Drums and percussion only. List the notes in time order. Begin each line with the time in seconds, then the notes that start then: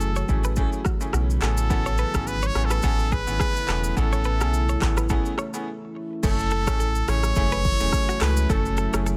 0.01 shaker
0.16 shaker
0.28 kick, shaker
0.44 shaker
0.56 kick, shaker
0.73 shaker
0.85 kick, cross-stick, shaker
1.01 shaker
1.13 cross-stick, shaker
1.30 shaker
1.41 clap, shaker
1.57 shaker
1.70 kick, shaker
1.86 shaker
1.98 shaker
2.14 kick, cross-stick, shaker
2.27 shaker
2.42 shaker
2.55 cross-stick, shaker
2.70 cross-stick, shaker
2.82 kick, shaker
2.99 shaker
3.12 kick, shaker
3.27 shaker
3.40 kick, cross-stick, shaker
3.57 shaker
3.67 cross-stick, clap, shaker
3.84 shaker
3.97 kick, shaker
4.13 shaker
4.24 shaker
4.41 cross-stick, shaker
4.54 shaker
4.69 shaker
4.81 kick, cross-stick, clap, shaker
4.97 cross-stick, shaker
5.09 kick, shaker
5.26 shaker
5.38 cross-stick, shaker
5.54 shaker
6.23 kick, crash, shaker
6.39 shaker
6.51 shaker
6.67 kick, cross-stick, shaker
6.80 shaker
6.95 shaker
7.08 cross-stick, open hi-hat, shaker
7.23 cross-stick, shaker
7.35 kick, shaker
7.52 shaker
7.65 kick, shaker
7.80 shaker
7.92 kick, cross-stick, shaker
8.10 shaker
8.20 cross-stick, clap, open hi-hat, shaker
8.37 shaker
8.50 kick, shaker
8.65 shaker
8.77 shaker
8.93 cross-stick, shaker
9.06 shaker